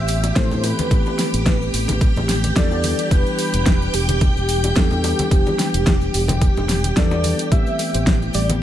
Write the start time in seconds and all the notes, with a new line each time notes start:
Already playing: A1 E3 A3 B3 C4 G4 E5 G5
0.08 open hi-hat, maracas
0.23 closed hi-hat, high bongo, maracas
0.35 A2 E3 A3 B3 C4 A4 C5, kick, snare, closed hi-hat, maracas
0.51 low conga, maracas
0.63 B4, open hi-hat, high bongo, maracas
0.79 closed hi-hat, high conga, maracas
0.90 A1 E3 A3 B3 C4 G4, kick, closed hi-hat, maracas
1.06 high bongo, maracas
1.19 snare, open hi-hat, maracas
1.34 A1, closed hi-hat, maracas
1.46 kick, snare, closed hi-hat, maracas
1.62 maracas
1.74 A1, open hi-hat, maracas
1.88 closed hi-hat, high conga, low conga, maracas
2.01 kick, closed hi-hat, maracas
2.16 A1, low conga, maracas
2.29 snare, open hi-hat, maracas
2.44 closed hi-hat, high conga, maracas
2.56 E2 E3 G3 B3 D4 A4 D5, kick, snare, closed hi-hat, maracas
2.71 high bongo, maracas
2.83 open hi-hat, high conga, maracas
2.99 closed hi-hat, maracas
3.10 E1 E3 G3 B3 D4 G4 B4, kick, closed hi-hat, maracas
3.26 maracas
3.39 open hi-hat, maracas
3.54 E1, closed hi-hat, maracas
3.66 kick, snare, closed hi-hat, maracas
3.82 maracas
3.94 E1 G4, open hi-hat, maracas
4.09 closed hi-hat, high conga, maracas
4.21 kick, closed hi-hat, maracas
4.37 E1, maracas
4.49 open hi-hat, maracas
4.64 closed hi-hat, high bongo, maracas
4.75 E2 E3 G3 B3 D4 A4, kick, snare, closed hi-hat, maracas
4.91 low conga, maracas
5.04 open hi-hat, high bongo, maracas
5.19 closed hi-hat, high conga, maracas
5.30 E1 E3 G3 B3 D4 G4, kick, closed hi-hat, maracas
5.47 high bongo, high conga, maracas
5.59 snare, open hi-hat, maracas
5.74 E1, closed hi-hat, maracas
5.86 kick, snare, closed hi-hat, maracas
6.01 maracas
6.14 E1, open hi-hat, maracas
6.28 closed hi-hat, high conga, low conga, maracas
6.41 kick, closed hi-hat, maracas
6.57 E1, low conga, maracas
6.69 snare, open hi-hat, maracas
6.84 closed hi-hat, high conga, maracas
6.96 E2 E3 G3 B3 D4 A4 D5, kick, snare, closed hi-hat, maracas
7.11 high bongo, maracas
7.24 open hi-hat, high conga, maracas
7.39 closed hi-hat, maracas
7.51 A1 E3 G3 A3 B3 C4 G4 E5 G5, kick, closed hi-hat, maracas
7.67 B3, maracas
7.79 A3, open hi-hat, maracas
7.94 A1 C4, closed hi-hat, maracas
8.06 G3, kick, snare, closed hi-hat, maracas
8.22 E4, maracas
8.33 A1 G3 D5, open hi-hat, maracas
8.49 B3, closed hi-hat, high conga, maracas